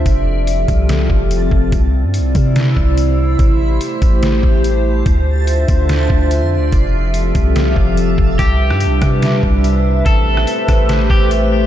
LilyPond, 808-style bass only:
\new Staff \with { instrumentName = "808-style bass" } { \clef bass \time 4/4 \key c \major \tempo 4 = 144 f,,4. c,4 f,,4 f,,8 | c,8. g,16. c,16. c4 c,4. | a,,4 r8 a,,4 a,,4. | d,4. d,4 d,8. f,16. d,16. |
f,,4. c,4 f,,4 f,,8 | c,8. g,16. c,16. c4 c,4. | a,,4 r8 a,,4 a,,4. | }